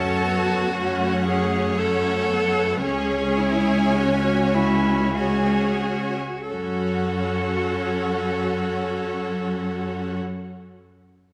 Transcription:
Already playing: F#2 F#3 C#4 F#4 A4 C#5 A5
0.25 B3
0.73 A3 C#4 C#5 F#5
1.28 G#4
1.76 C#4 A4 F#5
2.31 B3
2.80 C#5 G#5
2.84 C#2 C#4 G#4
3.38 E4
3.95 C#4 F#4
4.54 C#4 E4
5.16 C#4 F#4 G#4 C#5 G#5
6.50 F#2 C#4 F#4 A4 C#5 F#5

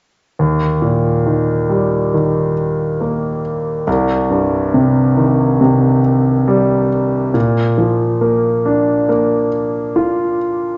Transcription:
0.39 D#2
0.82 A#2
1.27 D#3
1.69 G3
2.14 D#3
3.01 A#3
3.87 C2
4.30 G2
4.74 C3
5.17 D#3
5.61 C3
6.48 G3
7.34 A#2
7.78 F3
8.21 A#3
8.65 D4
9.09 A#3
9.96 F4

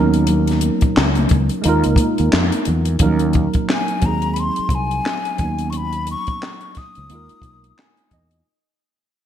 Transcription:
Already playing: D#2 F#3 B3 C#4 D#4
0.00 A#4
0.14 closed hi-hat
0.27 closed hi-hat, muted conga, low conga
0.47 snare, closed hi-hat, muted conga
0.61 closed hi-hat, high conga
0.81 kick, closed hi-hat
0.97 C#2, snare, clap
1.15 closed hi-hat, muted conga, high conga
1.29 C#2, kick, closed hi-hat, low conga
1.49 closed hi-hat
1.62 D#2 G#3 A#3 D#4, closed hi-hat, muted conga
1.67 F4 A#4
1.84 C#2, closed hi-hat
1.96 kick, closed hi-hat, high conga
2.18 D#2, closed hi-hat
2.33 F2, snare, clap
2.52 closed hi-hat, muted conga
2.65 E2, closed hi-hat, low conga
2.85 closed hi-hat
2.99 D#2 F3 A#3 C#4 D#4 A#4, kick, closed hi-hat
3.05 F#3
3.19 closed hi-hat
3.33 kick, closed hi-hat
3.54 kick, closed hi-hat
3.70 G#5, snare, clap
3.88 closed hi-hat
4.00 D#2 F#3 G#3 C4, kick, closed hi-hat
4.05 D#4 G#4 A#5
4.22 closed hi-hat
4.34 B5, closed hi-hat
4.40 C6
4.56 muted fretless electric bass stroke, closed hi-hat
4.69 C2, kick, closed hi-hat
4.75 G#5
4.91 closed hi-hat
5.06 snare, clap
5.25 closed hi-hat
5.37 D#2 F#3 B3 C#4, kick, closed hi-hat
5.43 A#3 D#4
5.58 closed hi-hat
5.70 C#6, closed hi-hat
5.77 B5
5.93 closed hi-hat
6.07 closed hi-hat
6.11 C#6
6.27 kick, closed hi-hat
6.43 snare, clap
6.61 closed hi-hat
6.75 D#6, muted fretless electric bass stroke, kick, snare, closed hi-hat
6.95 C#2, closed hi-hat
7.08 D#2 G#3 A#3 D#4, closed hi-hat
7.13 F4 A#4
7.29 closed hi-hat
7.42 B1, kick, closed hi-hat
7.64 closed hi-hat
7.79 G#5, snare, clap
7.97 closed hi-hat
8.11 E2 D#5, kick, closed hi-hat
8.31 closed hi-hat

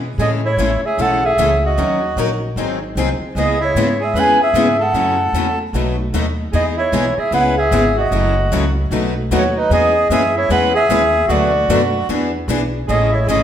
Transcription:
Already playing: B2
0.18 A2 C#3 E3 G#3 A3 C#4 E4 G#4 A4 D#5
0.45 E4 C#5
0.57 A1 C#3 E3 G#3 A3 C#4 E4 G#4 A4
0.83 G#4 E5, muted upright bass stroke
0.98 B1 C#3 E3 G#3 A3 C#4 E4 G#4 A4
1.02 F#5
1.24 G#4 E5
1.37 C#2 C#3 E3 G#3 A3 C#4 E4 G#4 A4
1.65 F#4 D#5
1.77 D#2 D#3 F#3 C#4 D#4 A#4
2.16 A#1 D#3 F#3 C#4 D#4 A#4
2.56 G#1 D#3 F#3 C4 D#4 G#4
2.95 C2 D#3 F#3 C4 D#4 G#4
3.20 muted upright bass stroke
3.35 C#2 C#3 E3 G#3 B3 C#4 E4 G#4 D#5
3.60 E4 C#5
3.75 G#2 C#3 E3 G#3 B3 C#4 E4 G#4
4.01 G#4 E5
4.14 E2 C#3 E3 G#3 B3 C#4 E4 G#4 B4
4.20 G#5
4.41 G#4 E5
4.53 G#2 C#3 E3 G#3 B3 C#4 E4 G#4
4.80 A4 F#5
4.93 F#2 C#3 E3 F#3 A3 C#4 E4 F#4 A4
5.33 E2 C#3 E3 F#3 A3 C#4 E4 F#4 A4
5.73 B1 B2 F#3 A3 D#4 F#4 B4
6.13 D#2 B2 F#3 A3 D#4 F#4 B4
6.52 E2 E3 G#3 B3 D#4 G#4 D#5
6.77 E4 C#5
6.92 B1 E3 G#3 B3 D#4 G#4
7.17 G#4 E5, muted upright bass stroke
7.31 C#2 C#3 E3 G#3 B3 C#4 E4 G#4 B4 F#5
7.57 G#4 E5
7.71 G#1 C#3 E3 G#3 B3 C#4 E4 G#4
7.96 F#4 D#5
8.11 F#1 C#3 E3 F#3 A3 C#4 E4 F#4 A4
8.51 C#2 C#3 E3 F#3 A3 C#4 E4 F#4 A4
8.91 B1 B2 F#3 A3 D#4 F#4 B4
9.31 D#2 B2 F#3 A3 D#4 F#4 B4
9.36 C#5
9.56 D#4 B4
9.70 E2 E3 G#3 B3 C#4 G#4 B4 D#5
10.10 F#2 E3 G#3 B3 C#4 G#4 B4 E5
10.36 E4 C#5
10.49 E2 E3 G#3 B3 C#4 G#4 B4 F#5
10.75 G#4 E5
10.89 D#2 E3 G#3 B3 C#4 G#4 B4
11.28 D2 B2 F#3 A3 D4 F#4 B4 D5
11.69 F#2 B2 F#3 A3 D4 F#4 B4
12.08 E2 E3 B3 D4 G#4 B4
12.48 B1 E3 B3 D4 G#4 B4
12.87 A1 C#3 E3 G#3 A3 C#4 E4 G#4 A4 D#5
13.11 E4
13.15 C#5
13.26 G#1 C#3 E3 G#3 A3 C#4 E4 G#4 A4 D#5

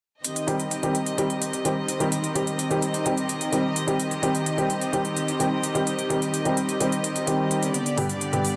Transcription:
0.24 D#3 C4 G4 D#5, closed hi-hat
0.36 closed hi-hat
0.47 D#3 G3 C4 G4, closed hi-hat
0.60 closed hi-hat
0.71 closed hi-hat
0.83 D#3 G3 C4 G4, closed hi-hat
0.95 closed hi-hat
1.06 closed hi-hat
1.18 D#3 G3 C4 G4, closed hi-hat
1.30 closed hi-hat
1.42 closed hi-hat
1.53 closed hi-hat
1.65 D#3 G3 C4 G4, closed hi-hat
1.88 closed hi-hat
2.00 D#3 G3 C4 G4, closed hi-hat
2.12 closed hi-hat
2.24 closed hi-hat
2.35 D#3 G3 C4 G4, closed hi-hat
2.47 closed hi-hat
2.59 closed hi-hat
2.70 D#3 G3 C4 G4, closed hi-hat
2.82 closed hi-hat
2.94 closed hi-hat
3.05 D#3 G3 C4 G4, closed hi-hat
3.17 closed hi-hat
3.29 closed hi-hat
3.41 closed hi-hat
3.52 D#3 G3 C4 G4, closed hi-hat
3.76 closed hi-hat
3.87 D#3 G3 C4 G4, closed hi-hat
4.00 closed hi-hat
4.11 closed hi-hat
4.22 D#3 G3 C4 G4, closed hi-hat
4.35 closed hi-hat
4.46 closed hi-hat
4.57 D#3 G3 C4 G4, closed hi-hat
4.70 closed hi-hat
4.81 closed hi-hat
4.93 D#3 G3 C4 G4, closed hi-hat
5.05 closed hi-hat
5.17 closed hi-hat
5.28 closed hi-hat
5.39 D#3 G3 C4 G4, closed hi-hat
5.63 closed hi-hat
5.75 D#3 G3 C4 G4, closed hi-hat
5.87 closed hi-hat
5.99 closed hi-hat
6.10 D#3 G3 C4 G4, closed hi-hat
6.22 closed hi-hat
6.34 closed hi-hat
6.45 D#3 G3 C4 G4, closed hi-hat
6.57 closed hi-hat
6.69 closed hi-hat
6.80 D#3 G3 C4 G4, closed hi-hat
6.92 closed hi-hat
7.04 closed hi-hat
7.16 closed hi-hat
7.27 D#3 G3 C4 G4, closed hi-hat
7.51 closed hi-hat
7.63 closed hi-hat
7.74 D3 B3 D5, closed hi-hat
7.86 closed hi-hat
7.97 G2 D3 G3 B3 G4, open hi-hat
8.09 closed hi-hat
8.21 closed hi-hat
8.32 G2 D3 G3 B3 G4, closed hi-hat
8.45 open hi-hat

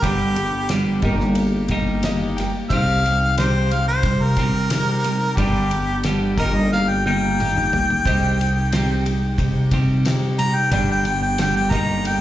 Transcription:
0.02 G1 G2 D3 G3 B3 D4 G4 B4, kick, ride
0.36 G2 D3 G3 B3 D4 G4, ride
0.69 G2 D3 G3 B3 D4 G4, snare, ride
1.02 G1 G3 A#3 D#4 G4 A#4, kick, ride
1.20 snare
1.35 G3 A#3, ride
1.40 D#4 G4
1.68 G3 A#3 D#4 G4, kick, ride
2.03 G2 D#3 G3 A#3 D#4 G4 D#5, snare, ride
2.37 G3 A#3 D#4 G4 G5, snare, ride
2.69 C2 C3 G3 C4 D#4 G4 C5 F5, kick, ride
3.05 C3 G3 C4 D#4 G4, ride
3.37 C3 G3 C4 D#4 G4 C5, snare, ride
3.71 C3 G3 C4 D#4 G4 F5, ride
3.88 C5, snare
4.03 C3 G3 C4 D#4 G4, kick, ride
4.22 A#4
4.37 C3 G3 C4 D#4 G4, kick, ride
4.69 C3 G3 C4 D#4 G4, snare, ride
4.74 C3 G3
5.04 C3 G3 C4 D#4 G4, ride
5.37 G1 G2 D3 G3 B3 D4 G4 B4 D5, kick, ride
5.71 G2 D3 G3 B3 D4 G4, ride
6.04 G2 D3 G3 B3 D4 G4, snare, ride
6.38 G1 G3 A#3 D#4 G4 A#4 D#5, kick, ride
6.55 D#5
6.73 G3 A#3 D#4 G4 F5, snare
6.89 G5
7.06 G3 A#3 D#4 G4 G5, high tom
7.40 G2 D#3 G3 A#3 D#4 G4, mid tom
7.56 mid tom
7.73 G3 A#3 D#4 G4, floor tom
7.90 floor tom
8.05 C2 C3 G3 C4 D#4 G4 C5 D#5, kick, ride
8.39 C3 G3 C4 D#4 G4, ride
8.72 C3 G3 C4 D#4 G4, snare, ride
9.05 C3 G3 C4 D#4 G4, ride
9.38 C3 G3 C4 D#4 G4, kick, ride
9.71 C3 G3 C4 D#4 G4, kick, ride
10.05 C3 G3 C4 D#4 G4, snare, ride
10.39 C3 G3 D#4 A#5, snare, ride
10.56 G5
10.71 G1 G2 D3 G3 B3 D4 G4 B4 D5 G5, kick, ride
10.92 G5
11.04 G2 D3 G3 B3 D4 G4 G5, ride
11.23 G5
11.38 G2 D3 G3 B3 D4 G4 G5, snare, ride
11.57 G5
11.69 G1 G3 A#3 D#4 G4 A#4 D#5 A#5, kick, ride
12.04 G3 A#3 D#4 G4 G5, ride

